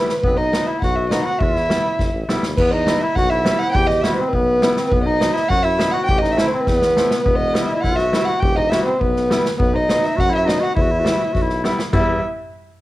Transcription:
Already playing: B4
0.09 snare
0.20 B1 B3 B4, kick
0.26 C4
0.31 B3
0.37 D#4 D#5
0.53 F#3 B3 D#4, snare
0.66 E4 E5
0.81 B1 F#4 F#5, kick, snare
0.96 E5
1.09 F#3 B3 D#4 F#4 D#5, snare
1.24 F#4 F#5
1.39 E2 E5, kick
1.43 E4
1.56 snare
1.69 G3 B3 E4, snare
1.99 G1, kick, snare
2.13 A1
2.28 B1 G3 B3 E4, snare
2.42 D#2, snare
2.57 E2 B3 B4, kick, crash
2.71 D#4 D#5
2.87 G3 B3 E4, snare
3.01 E4 E5
3.15 B1 F#4 F#5, kick, snare
3.30 E4 E5
3.45 G3 B3 E4, snare
3.59 F#5
3.72 E2 G5, kick
3.76 G4
3.87 D#5, snare
4.01 G3 B3 E4 F#4 E5, snare
4.15 C5
4.20 C4
4.29 B4
4.33 B1 B3, kick
4.62 G3 B3 E4, snare
4.77 C4, snare
4.88 B1 B4, kick
4.92 B3
5.03 D#4 D#5
5.20 F#3 B3 D#4, snare
5.33 E4 E5, snare
5.48 F#2 F#4 F#5, kick, snare
5.63 E4 E5
5.78 F#3 B3 D#4, snare
5.91 F#4 F#5
6.05 A1 G5, kick
6.10 G4
6.18 D#4 D#5
6.24 snare
6.32 E5
6.37 A3 C4 E4, snare
6.47 C5
6.53 C4
6.60 B4
6.67 E2 B3, kick, snare
6.82 snare
6.96 A3 C4 E4, snare
7.11 snare
7.21 B3 B4
7.26 E1, kick
7.35 D#5
7.54 G3 B3 E4, snare
7.66 E4 E5
7.71 D#5 E5
7.76 E4
7.81 B1 F#4 F#5, kick, snare
7.96 E5, snare
8.13 G3 B3 E4, snare
8.25 F#4 F#5
8.40 E1 G4 G5, kick
8.56 D#4 D#5
8.69 G3 B3 E4 F#4 E5, snare
8.85 C4 C5
8.99 B1 B3 B4, kick
9.16 snare
9.30 G3 B3 E4, snare
9.45 snare
9.57 B1 B3 B4, kick
9.74 D#4 D#5
9.89 F#3 B3 D#4, snare
10.04 E5, snare
10.16 F#2 F#4 F#5, kick, snare
10.30 E4
10.35 E5
10.45 F#3 B3 D#4 D#5, snare
10.60 F#4 F#5
10.75 E2 E4 E5, kick
10.82 F#4
10.92 E4
11.00 F#4
11.04 G3 B3 E4, snare
11.09 E4
11.18 F#4
11.24 E4
11.33 B1 F#4, kick, snare
11.42 E4
11.49 snare
11.64 G3 B3 E4, snare
11.79 snare
11.93 E2 G3 B3 E4 E5, kick, floor tom, splash

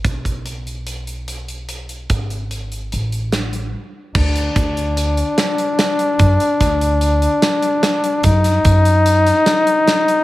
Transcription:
0.05 B1, kick, closed hi-hat
0.25 kick, closed hi-hat
0.46 closed hi-hat
0.67 closed hi-hat
0.87 closed hi-hat
1.07 closed hi-hat
1.28 closed hi-hat
1.48 closed hi-hat
1.69 closed hi-hat
1.89 closed hi-hat
2.10 G#1, kick, closed hi-hat
2.30 closed hi-hat
2.51 closed hi-hat
2.72 closed hi-hat
2.92 A1, closed hi-hat
3.12 closed hi-hat
3.32 snare, closed hi-hat
3.53 closed hi-hat
4.15 D2 D4, kick, crash
4.36 closed hi-hat
4.56 D2, kick, closed hi-hat
4.77 closed hi-hat
4.97 closed hi-hat
5.17 closed hi-hat
5.38 snare, closed hi-hat
5.58 closed hi-hat
5.79 snare, closed hi-hat
5.99 closed hi-hat
6.19 F#2, kick, closed hi-hat
6.40 closed hi-hat
6.60 D2, kick, snare, closed hi-hat
6.81 closed hi-hat
7.01 closed hi-hat
7.22 closed hi-hat
7.42 snare, closed hi-hat
7.62 closed hi-hat
7.83 snare, closed hi-hat
8.04 closed hi-hat
8.23 F#2 D#4, kick, closed hi-hat
8.44 snare, closed hi-hat
8.65 F#2, kick, closed hi-hat
8.85 closed hi-hat
9.06 closed hi-hat
9.27 snare, closed hi-hat
9.46 snare, closed hi-hat
9.67 closed hi-hat
9.88 snare, closed hi-hat
10.08 closed hi-hat

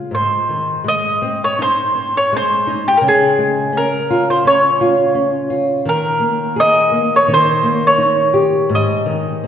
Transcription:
0.11 G#2 C5
0.49 D#3
0.84 G#3
0.88 D#5
1.22 C4
1.44 C#5
1.59 D#4 C5
1.95 C4
2.17 C#5
2.33 G#3 C5
2.67 D#4
2.88 G4
2.97 C#3 A#4
3.08 G#4
3.38 G#3
3.73 C#4
3.77 A#4
4.10 F4
4.30 C5
4.45 C#4 C#5
4.81 F4
5.15 C#4
5.50 F4
5.85 D#3 A#4
6.20 A#3
6.56 G#4 D#5
6.91 A#3
7.16 C#5
7.28 D#3
7.34 C5
7.63 A#3
7.87 C#5
7.98 D#4
8.34 G4
8.69 G#2
8.75 D#5
9.06 D#3
9.44 C4

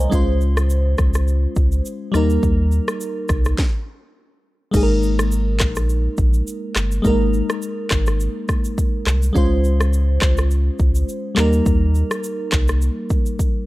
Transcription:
Already playing: C5 C#5 D#5 F5 G#5 A#5
0.10 C#2 G#3 C#4 F4, kick, shaker
0.15 C5
0.41 shaker
0.57 cross-stick, shaker
0.70 shaker
0.98 C#2, kick, cross-stick, shaker
1.14 cross-stick, shaker
1.28 shaker
1.56 C#2, kick, shaker
1.72 shaker
1.86 shaker
2.12 D#2 G3 A#3 D#4, cross-stick, shaker
2.17 A#4
2.30 shaker
2.43 D#2, kick, shaker
2.72 shaker
2.88 cross-stick, shaker
3.01 shaker
3.29 C2, kick, cross-stick, shaker
3.45 cross-stick, shaker
3.58 kick, snare
4.71 G#1 G#3 A#3 D#4, kick, crash, shaker
4.76 G#4
4.83 A#4
5.03 shaker
5.19 cross-stick, shaker
5.32 shaker
5.60 A#1, kick, cross-stick, clap, shaker
5.76 cross-stick, shaker
5.89 shaker
6.17 A#1, kick, shaker
6.34 shaker
6.47 shaker
6.76 G1, cross-stick, clap, shaker
6.92 shaker
7.02 G#1 G#3 A#3 D#4, kick, shaker
7.07 A#4
7.33 shaker
7.50 cross-stick, shaker
7.62 shaker
7.90 G#1, kick, cross-stick, clap, shaker
8.06 cross-stick, shaker
8.20 shaker
8.48 kick, cross-stick, shaker
8.65 shaker
8.78 kick, shaker
9.06 C2, cross-stick, clap, shaker
9.22 shaker
9.33 C#2 G#3 C#4 F4, kick, shaker
9.38 C5
9.64 shaker
9.81 cross-stick, shaker
9.93 shaker
10.21 C#2, kick, cross-stick, clap, shaker
10.37 cross-stick, shaker
10.51 shaker
10.79 C#2, kick, shaker
10.95 shaker
11.09 shaker
11.35 D#2 G3 A#3 D#4, cross-stick, clap, shaker
11.40 A#4
11.53 shaker
11.66 D#2, kick, shaker
11.95 shaker
12.11 cross-stick, shaker
12.24 shaker
12.52 C2, kick, cross-stick, clap, shaker
12.68 cross-stick, shaker
12.82 shaker
13.10 kick, shaker
13.26 shaker
13.39 kick, shaker

